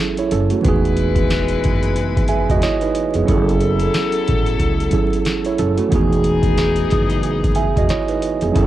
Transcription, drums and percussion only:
0.17 closed hi-hat soft
0.31 closed hi-hat medium
0.50 closed hi-hat medium
0.64 kick loud
0.64 closed hi-hat medium
0.85 closed hi-hat soft
0.97 closed hi-hat medium
1.15 kick medium
1.15 closed hi-hat medium
1.30 snare loud
1.30 closed hi-hat medium
1.48 closed hi-hat medium
1.64 kick medium
1.64 closed hi-hat medium
1.83 closed hi-hat medium
1.96 closed hi-hat medium
2.17 kick medium
2.17 closed hi-hat medium
2.28 closed hi-hat medium
2.49 kick medium
2.49 closed hi-hat medium
2.62 snare loud
2.62 closed hi-hat medium
2.81 closed hi-hat soft
2.95 closed hi-hat medium
3.14 closed hi-hat medium
3.28 kick loud
3.28 closed hi-hat medium
3.49 closed hi-hat soft
3.60 closed hi-hat medium
3.80 closed hi-hat medium
3.94 snare loud
3.94 closed hi-hat medium
4.12 closed hi-hat medium
4.28 kick medium
4.28 closed hi-hat medium
4.47 closed hi-hat medium
4.59 kick medium
4.59 closed hi-hat medium
4.80 closed hi-hat medium
4.91 kick medium
4.91 closed hi-hat medium
5.13 closed hi-hat medium
5.25 snare loud
5.25 closed hi-hat medium
5.45 closed hi-hat soft
5.58 closed hi-hat medium
5.78 closed hi-hat medium
5.92 kick loud
5.92 closed hi-hat loud
6.13 closed hi-hat soft
6.24 closed hi-hat medium
6.43 kick medium
6.43 closed hi-hat medium
6.58 snare loud
6.58 closed hi-hat medium
6.76 closed hi-hat medium
6.90 kick medium
6.90 snare soft
6.90 closed hi-hat medium
7.10 closed hi-hat medium
7.23 closed hi-hat medium
7.44 kick medium
7.44 closed hi-hat medium
7.55 closed hi-hat medium
7.76 kick medium
7.76 closed hi-hat medium
7.89 snare loud
7.89 closed hi-hat medium
8.08 closed hi-hat soft
8.22 closed hi-hat medium
8.41 closed hi-hat medium
8.56 kick loud
8.56 closed hi-hat medium

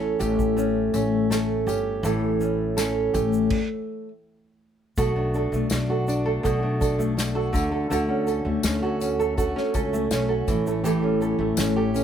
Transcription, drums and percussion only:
0.20 tambourine soft
0.20 shaker soft
0.39 kick medium
0.39 shaker soft
0.58 shaker medium
0.94 tambourine soft
0.94 shaker medium
1.31 snare medium
1.31 tambourine medium
1.31 shaker medium
1.68 tambourine soft
1.68 shaker soft
2.04 tambourine soft
2.04 shaker medium
2.41 shaker soft
2.78 snare loud
2.78 tambourine loud
2.78 shaker medium
3.14 kick medium
3.14 tambourine soft
3.14 shaker soft
3.33 shaker soft
3.50 kick loud
3.50 crash medium
4.97 kick loud
4.97 tambourine soft
4.97 shaker medium
5.34 shaker soft
5.53 shaker soft
5.70 snare loud
5.70 tambourine medium
5.70 shaker medium
6.08 tambourine soft
6.08 shaker soft
6.45 kick medium
6.45 tambourine soft
6.45 shaker medium
6.81 kick medium
6.81 tambourine soft
6.81 shaker medium
7.00 shaker medium
7.18 snare medium
7.18 tambourine medium
7.18 shaker medium
7.54 kick medium
7.54 tambourine medium
7.54 shaker soft
7.91 tambourine soft
7.91 shaker medium
8.27 tambourine soft
8.27 shaker soft
8.63 snare loud
8.63 tambourine loud
8.63 shaker medium
9.01 tambourine soft
9.01 shaker soft
9.20 shaker soft
9.38 kick medium
9.38 tambourine soft
9.38 shaker medium
9.57 snare soft
9.74 kick medium
9.74 tambourine soft
9.74 shaker medium
9.94 shaker medium
10.11 snare loud
10.11 tambourine medium
10.11 shaker medium
10.48 kick loud
10.48 tambourine soft
10.48 shaker soft
10.67 shaker medium
10.85 tambourine soft
10.85 shaker medium
11.22 shaker soft
11.57 snare loud
11.57 tambourine medium
11.57 shaker medium
11.95 tambourine soft
11.95 shaker soft

